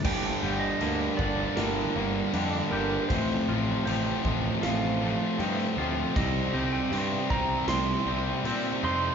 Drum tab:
CC |x---x---x---x---|x---x---x---x---|x---x---x---x---|
SD |--------o----o--|--------o----o--|--------o----o--|
BD |o-----o---------|o-----o---------|o-----o---------|